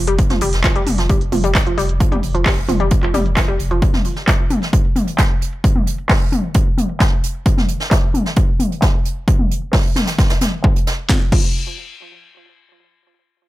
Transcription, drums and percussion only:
0.07 closed hi-hat
0.19 kick, closed hi-hat
0.30 snare, closed hi-hat, mid tom
0.41 closed hi-hat, open hi-hat
0.53 snare, closed hi-hat
0.64 kick, snare, clap, closed hi-hat
0.76 closed hi-hat
0.87 closed hi-hat, open hi-hat, mid tom
0.98 snare, closed hi-hat
1.09 kick, closed hi-hat
1.21 closed hi-hat
1.32 closed hi-hat, open hi-hat, mid tom
1.44 closed hi-hat
1.55 kick, snare, clap, closed hi-hat
1.67 closed hi-hat
1.78 closed hi-hat, open hi-hat
1.89 closed hi-hat
2.00 kick, closed hi-hat
2.12 closed hi-hat, mid tom
2.23 closed hi-hat, open hi-hat
2.35 closed hi-hat
2.46 kick, snare, clap, closed hi-hat, open hi-hat
2.57 closed hi-hat
2.69 closed hi-hat, open hi-hat, mid tom
2.80 closed hi-hat
2.90 kick, closed hi-hat
3.03 clap, closed hi-hat
3.14 closed hi-hat, open hi-hat, mid tom
3.26 closed hi-hat
3.36 kick, snare, clap, closed hi-hat
3.48 closed hi-hat
3.59 closed hi-hat, open hi-hat
3.71 closed hi-hat
3.82 kick, closed hi-hat
3.94 snare, closed hi-hat, mid tom
4.04 closed hi-hat, open hi-hat
4.16 snare, closed hi-hat
4.27 kick, snare, clap, closed hi-hat
4.39 closed hi-hat
4.50 closed hi-hat, open hi-hat, mid tom
4.62 snare, closed hi-hat
4.73 kick, closed hi-hat
4.85 closed hi-hat
4.96 closed hi-hat, open hi-hat, mid tom
5.07 closed hi-hat
5.18 kick, snare, clap, closed hi-hat
5.30 closed hi-hat
5.41 closed hi-hat, open hi-hat
5.53 closed hi-hat
5.64 kick, closed hi-hat
5.76 closed hi-hat, mid tom
5.87 closed hi-hat, open hi-hat
5.98 closed hi-hat
6.09 kick, snare, clap, open hi-hat
6.32 closed hi-hat, open hi-hat, mid tom
6.44 closed hi-hat
6.54 kick, closed hi-hat
6.67 closed hi-hat
6.78 closed hi-hat, open hi-hat, mid tom
6.89 closed hi-hat
7.00 kick, snare, clap, closed hi-hat
7.23 closed hi-hat, open hi-hat
7.35 closed hi-hat
7.45 kick, closed hi-hat
7.58 snare, closed hi-hat, mid tom
7.68 closed hi-hat, open hi-hat
7.80 snare, closed hi-hat
7.91 kick, snare, clap, closed hi-hat
8.14 closed hi-hat, open hi-hat, mid tom
8.26 snare, closed hi-hat
8.36 kick, closed hi-hat
8.48 closed hi-hat
8.60 closed hi-hat, open hi-hat, mid tom
8.71 closed hi-hat
8.82 kick, snare, clap, closed hi-hat
9.05 closed hi-hat, open hi-hat
9.16 closed hi-hat
9.27 kick, closed hi-hat
9.39 mid tom
9.50 closed hi-hat, open hi-hat
9.62 closed hi-hat
9.73 kick, snare, clap, open hi-hat
9.96 snare, closed hi-hat, mid tom
10.07 snare, closed hi-hat
10.19 kick, snare, closed hi-hat
10.30 snare, clap, closed hi-hat
10.41 snare, closed hi-hat, mid tom
10.64 kick, clap
10.76 closed hi-hat
10.87 snare, closed hi-hat
11.09 kick, snare
11.32 kick, crash

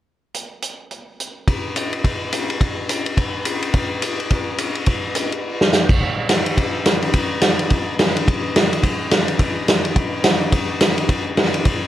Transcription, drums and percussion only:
0.34 closed hi-hat
0.62 closed hi-hat
0.91 closed hi-hat
1.20 closed hi-hat
1.48 kick, ride
1.76 hi-hat pedal, ride
1.92 ride
2.04 kick, ride
2.33 hi-hat pedal, ride
2.50 ride
2.61 kick, ride
2.89 hi-hat pedal, ride
3.06 ride
3.17 kick, ride
3.45 hi-hat pedal, ride
3.63 ride
3.74 kick, ride
4.02 hi-hat pedal, ride
4.20 ride
4.31 kick, ride
4.58 hi-hat pedal, ride
4.75 ride
4.86 kick, ride
5.15 hi-hat pedal, ride
5.32 ride
5.61 snare
5.73 snare, hi-hat pedal
5.89 kick, crash
6.01 kick
6.29 snare, hi-hat pedal, ride
6.46 ride
6.57 kick, ride
6.86 snare, hi-hat pedal, ride
7.03 ride
7.14 kick, ride
7.42 snare, hi-hat pedal, ride
7.59 ride
7.70 kick, ride
7.99 snare, hi-hat pedal, ride
8.16 ride
8.28 kick, ride
8.56 snare, hi-hat pedal, ride
8.73 ride
8.83 kick, ride
9.11 snare, hi-hat pedal, ride
9.28 ride
9.39 kick, ride
9.68 snare, hi-hat pedal, ride
9.85 ride
9.96 kick, ride
10.24 snare, hi-hat pedal, ride
10.52 kick, ride
10.80 snare, hi-hat pedal, ride
10.98 ride
11.09 kick, ride
11.37 snare, hi-hat pedal, ride
11.54 ride
11.65 kick, ride

